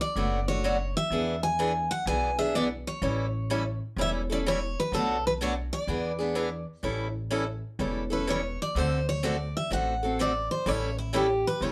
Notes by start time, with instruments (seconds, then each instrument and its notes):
0.01 steel-string acoustic guitar D5
0.16 upright bass F#1, steel-string acoustic guitar B2 F#3 A3 D4 F#4
0.48 steel-string acoustic guitar A3 D4 F#4 C#5
0.64 steel-string acoustic guitar B2 F#3 A3 D4 F#4
0.97 steel-string acoustic guitar E5
1.10 upright bass E2, steel-string acoustic guitar E3 B3 D4 G#4
1.43 steel-string acoustic guitar G#5
1.59 steel-string acoustic guitar E3 B3 D4 G#4
1.91 steel-string acoustic guitar F#5
2.06 upright bass B1, steel-string acoustic guitar E3 B3 D4 G#4 G#5
2.38 steel-string acoustic guitar B3 D4 G#4 E5
2.55 steel-string acoustic guitar E3 B3 D4 G#4 D5
2.87 steel-string acoustic guitar C#5
3.02 upright bass A1, steel-string acoustic guitar E3 G3 C#4 E4 A4
3.50 steel-string acoustic guitar E3 G3 C#4 E4 A4
3.97 upright bass E1, steel-string acoustic guitar E3 G3 C#4 E4 A4
4.01 steel-string acoustic guitar E5
4.30 steel-string acoustic guitar C#4 E4 A4 D5
4.46 steel-string acoustic guitar E3 G3 C#4 E4 A4 C#5
4.80 steel-string acoustic guitar B4
4.92 upright bass B1, steel-string acoustic guitar B2 F#3 A3 D4 F#4 A4
5.27 steel-string acoustic guitar B4
5.41 steel-string acoustic guitar B2 F#3 A3 D4 F#4 C#5
5.73 steel-string acoustic guitar D5
5.87 upright bass E2, steel-string acoustic guitar E3 B3 D4 G#4
6.19 steel-string acoustic guitar B3 D4 G#4
6.35 steel-string acoustic guitar E3 B3 D4 G#4
6.83 upright bass A1, steel-string acoustic guitar E3 G3 C#4 E4 A4
7.31 steel-string acoustic guitar E3 G3 C#4 E4 A4
7.79 upright bass E1, steel-string acoustic guitar E3 G3 C#4 E4 A4
8.10 steel-string acoustic guitar C#4 E4 A4 B4
8.27 steel-string acoustic guitar E3 G3 C#4 E4 A4 C#5
8.62 steel-string acoustic guitar D5
8.75 upright bass D2, steel-string acoustic guitar D3 A3 C4 F#4 A4 C5
9.09 steel-string acoustic guitar C#5
9.23 steel-string acoustic guitar D3 A3 C4 F#4 A4 D5
9.57 steel-string acoustic guitar E5
9.70 upright bass A1, steel-string acoustic guitar D3 A3 C4 F#4 A4 F#5
10.03 steel-string acoustic guitar C4 F#4 A4
10.19 steel-string acoustic guitar D3 A3 C4 F#4 A4 D5
10.51 steel-string acoustic guitar C5
10.66 upright bass A1, steel-string acoustic guitar E3 G3 C#4 E4 A4 C#5
10.98 steel-string acoustic guitar E4
11.13 steel-string acoustic guitar E3 G3 C#4 E4 G4 A4
11.47 steel-string acoustic guitar B4
11.61 upright bass E1, steel-string acoustic guitar E3 G3 C#4 E4 A4 C#5